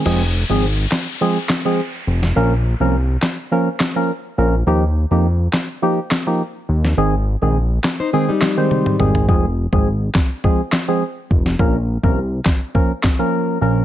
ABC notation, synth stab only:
X:1
M:4/4
L:1/16
Q:1/4=104
K:Fm
V:1 name="Synth stab"
[F,A,CA] z2 [F,A,CA] z4 [F,A,CA] z2 [F,A,CA] z4 | [F,B,DB] z2 [F,B,DB] z4 [F,B,DB] z2 [F,B,DB] z2 [F,B,DB] z | [F,B,EG] z2 [F,B,EG] z4 [F,B,EG] z2 [F,B,EG] z4 | [E,A,CA] z2 [E,A,CA] z4 [E,A,CA] z2 [E,A,Cc]3 [E,A,CA]2 |
[F,A,CA] z2 [F,A,CA] z4 [F,A,CA] z2 [F,A,CA] z4 | [F,B,DB] z2 [F,B,DB] z4 [F,B,DB] z2 [F,B,DB]3 [F,B,DB]2 |]